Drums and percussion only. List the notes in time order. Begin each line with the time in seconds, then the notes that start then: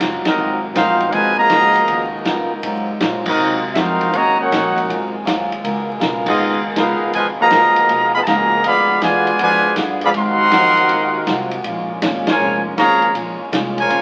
0.00 kick, snare, hi-hat pedal, ride
0.25 snare, ride
0.75 kick, snare, hi-hat pedal, ride
1.00 ride
1.12 kick, ride
1.50 kick, snare, hi-hat pedal, ride
1.75 ride
1.88 kick, ride
2.25 kick, snare, hi-hat pedal, ride
2.63 kick, ride
3.00 kick, snare, hi-hat pedal, ride
3.26 kick, crash
3.75 kick, snare, hi-hat pedal, ride
4.01 kick, ride
4.13 kick, ride
4.51 kick, snare, hi-hat pedal, ride
4.76 kick, ride
4.89 kick, ride
5.26 kick, snare, hi-hat pedal, ride
5.52 ride
5.64 kick, ride
6.01 kick, snare, hi-hat pedal, ride
6.26 kick, crash
6.76 kick, snare, hi-hat pedal, ride
7.13 kick, ride
7.50 kick, snare, hi-hat pedal, ride
7.76 ride
7.89 kick, ride
8.26 kick, snare, hi-hat pedal, ride
8.64 kick, ride
9.02 kick, snare, hi-hat pedal, ride
9.27 ride
9.39 kick, ride
9.76 kick, snare, hi-hat pedal, ride
10.01 ride
10.14 kick, ride
10.51 kick, snare, hi-hat pedal, ride
10.77 ride
10.89 kick, ride
11.27 kick, snare, hi-hat pedal, ride
11.51 ride
11.64 kick, ride
12.02 kick, snare, hi-hat pedal, ride
12.27 snare, ride
12.77 kick, snare, hi-hat pedal, ride
13.02 ride
13.15 kick, ride
13.53 kick, snare, hi-hat pedal, ride
13.78 ride
13.90 kick, ride